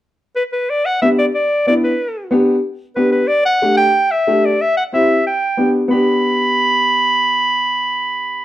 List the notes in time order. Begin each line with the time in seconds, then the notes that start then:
0.36 B4
0.53 B4
0.70 D5
0.86 F#5
1.02 B3 D4 G4 E5
1.19 D5
1.35 D5
1.67 B3 D4 E4 D5
1.84 B4
2.31 B3 D4 G4
2.96 B3 D4 G4 B4
3.12 B4
3.27 D5
3.45 F#5
3.62 A3 D4 G4
3.77 G5
4.11 E5
4.27 A3 D4 G4
4.45 D5
4.61 E5
4.77 F#5
4.93 C4 E4 G4 E5
5.27 G5
5.57 B3 D4 G4
5.88 B3 D4 B5
5.92 G4